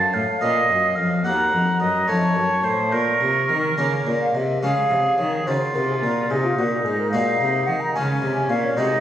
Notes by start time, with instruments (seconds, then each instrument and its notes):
Already playing: harpsichord F#2 F4, cello F#2, flute F5, oboe A5
0.14 harpsichord A2, cello A2, oboe F5
0.41 harpsichord A#2 A#3 C#4 F4, cello A#2, oboe D#5
0.69 harpsichord F#2, cello F#2
0.96 harpsichord F2, cello F2, oboe F5
1.24 harpsichord D#2 A#3 D#4 F#4, cello D#2, oboe F#5, flute A#5
1.52 harpsichord F2, cello F2
1.79 harpsichord F#2, cello F#2, oboe D#5
2.08 harpsichord F2 A3 D#4 F4, cello F2, oboe C#5, flute A5
2.35 harpsichord F#2, cello F#2
2.64 harpsichord A2, cello A2, oboe C5
2.92 harpsichord A#2, cello A#2, oboe A#4, flute C#6
3.21 harpsichord C3, cello C3
3.49 harpsichord D#3, cello D#3
3.78 cello C#3, harpsichord C#3 A#3 C#4 F4, flute C#5
4.06 cello A#2, harpsichord A#2
4.21 flute F5
4.34 cello C3, harpsichord C3, flute D#5
4.62 cello C#3, harpsichord C#3 G#3 C#4 F4, oboe G#4, flute F5
4.90 cello C3, harpsichord C3
5.18 harpsichord D#3, cello D#3, flute C#5
5.46 cello C#3, harpsichord C#3 D#4 F#4, oboe F4, flute C5
5.74 cello C3, harpsichord C3, flute A#4
5.89 flute G#4
6.02 cello A#2, harpsichord A#2, flute A#4
6.29 cello C3, harpsichord C3, oboe D#4, flute G#4
6.44 flute F4
6.58 cello A#2, harpsichord A#2, flute F#4
6.71 flute A#4
6.84 cello G#2, harpsichord G#2, flute G#4
6.98 flute A#4
7.11 cello A#2, harpsichord A#2 G#3 D#4 F#4, flute F5
7.41 cello C3, harpsichord C3
7.67 cello D#3, harpsichord D#3, flute F#5
7.80 flute A#5
7.93 cello C#3, harpsichord C#3 G#3 C#4 F4, oboe C#4, flute G#5
8.22 harpsichord C3, cello C3
8.49 cello A#2, harpsichord A#2, flute F5
8.63 flute C#5
8.76 harpsichord C3 G#3 D#4 F#4, cello C3, oboe D#4, flute D#5